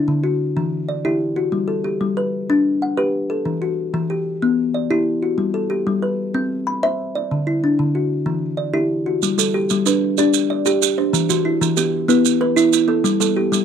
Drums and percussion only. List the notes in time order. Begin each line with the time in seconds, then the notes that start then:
9.23 maracas
9.39 maracas
9.70 maracas
9.86 maracas
10.18 maracas
10.34 maracas
10.66 maracas
10.82 maracas
11.14 maracas
11.30 maracas
11.62 maracas
11.77 maracas
12.09 maracas
12.25 maracas
12.57 maracas
12.73 maracas
13.05 maracas
13.21 maracas
13.53 maracas